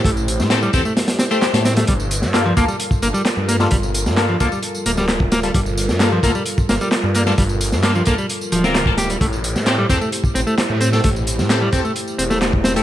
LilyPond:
<<
  \new Staff \with { instrumentName = "Analog synth pad" } { \time 4/4 \key g \dorian \tempo 4 = 131 <a e' g' c''>1 | <g f' a' bes'>1~ | <g f' a' bes'>1~ | <g f' a' bes'>1~ |
<g f' a' bes'>1 | <a e' g' c''>1~ | <a e' g' c''>1 | }
  \new Staff \with { instrumentName = "Synth stab" } { \time 4/4 \key g \dorian r4 <c' g' a'>16 r16 <c' g' a'>16 r4 <c' g' c''>8 <c' g' a'>16 r8 | r4 <bes f' a'>16 r16 <bes f' a'>16 r2 <bes f' a'>16 | r4 <bes f' a'>16 r16 <bes f' a'>16 r2 <bes f' a'>16 | r4 <bes f' a'>16 r16 <bes f' a'>16 r2 <bes f' a'>16 |
r4 <bes f' a'>16 r16 <bes f' a'>16 r4 <bes f' bes'>8 <bes f' a'>16 r8 | r4 <c' g' a'>16 r16 <c' g' a'>16 r2 <c' g' a'>16 | r4 <c' g' a'>16 r16 <c' g' a'>16 r2 <c' g' a'>16 | }
  \new Staff \with { instrumentName = "Clean electric guitar" } { \time 4/4 \key g \dorian a16 r8. c'16 g16 c'16 a16 r8 c'16 a16 r8 c'16 a16 | g16 r8. bes16 f16 bes16 g16 r8 bes16 g16 r8 bes16 g16 | g16 r8. bes16 f16 bes16 g16 r8 bes16 g16 r8 bes16 g16 | g16 r8. bes16 f16 bes16 g16 r8 bes16 g16 r8 bes16 g16 |
g16 r8. bes16 f16 bes16 g16 r8 f16 c'16 r8 g'16 g16 | a16 r8. c'16 g16 c'16 a16 r8 c'16 a16 r8 c'16 a16 | a16 r8. c'16 g16 c'16 a16 r8 c'16 a16 r8 c'16 a16 | }
  \new Staff \with { instrumentName = "Detuned saw bass" } { \clef bass \time 4/4 \key g \dorian a,,8. a,8. e,16 r4. a,8. | g,,8. g,8. d,16 r8. g,,16 r8 g,8. | g,,8. g,8. d,16 r8. d,,4. | g,,8. g,8. d,16 r8. g,,16 r8 g,8. |
g,,8. g,8. d,16 r8. d,,4. | a,,8. a,8. e,16 r8. a,,16 r8 a,8. | a,,8. a,8. e,16 r8. e,,4. | }
  \new DrumStaff \with { instrumentName = "Drums" } \drummode { \time 4/4 <hh bd tamb>16 tamb16 <hh tamb>16 <sn tamb>16 <hc hh sn tamb>16 tamb16 <hh bd tamb>16 tamb16 <hh sn tamb>16 <hh sn tamb>16 <hh sn tamb>16 tamb16 <hc hh sn tamb>16 <hh sn tamb>16 <hh sn tamb>16 <hh sn tamb>16 | <hh bd tamb>16 tamb16 <hh tamb>16 <sn tamb>16 <hc hh sn tamb>8 <hh bd tamb>16 tamb16 <hh tamb>16 <bd tamb>16 <hh tamb>16 tamb16 <hc hh sn tamb>8 <hh tamb>16 <sn tamb>16 | <hh bd tamb>16 tamb16 <hh tamb>16 <sn tamb>16 <hc hh sn tamb>8 <hh bd tamb>16 tamb16 <hh tamb>16 tamb16 <hh tamb>16 <sn tamb>16 <hc hh sn tamb>16 bd16 <hh sn tamb>16 <hh tamb>16 | <hh bd tamb>16 tamb16 <hh tamb>16 <sn tamb>16 <hc hh sn tamb>8 <hh bd tamb>16 tamb16 <hh tamb>16 <bd tamb>16 <hh sn tamb>16 tamb16 <hc hh sn tamb>8 <hh tamb>16 <sn tamb>16 |
<hh bd tamb>16 tamb16 <hh tamb>16 <sn tamb>16 <hc hh sn tamb>16 tamb16 <hh bd tamb>16 tamb16 <hh tamb>16 tamb16 <hh tamb>16 <sn tamb>16 <hc hh sn tamb>16 bd16 <hh sn tamb>16 <hh tamb>16 | <hh bd tamb>16 tamb16 <hh tamb>16 <sn tamb>16 <hc hh sn tamb>8 <hh bd tamb>16 tamb16 <hh tamb>16 <bd tamb>16 <hh tamb>16 tamb16 <hc hh sn tamb>8 <hh tamb>16 <sn tamb>16 | <hh bd tamb>16 tamb16 <hh tamb>16 <sn tamb>16 <hc hh sn tamb>8 <hh bd tamb>16 tamb16 <hh tamb>16 tamb16 <hh tamb>16 <sn tamb>16 <hc hh sn tamb>16 bd16 <hh sn tamb>16 <hh tamb>16 | }
>>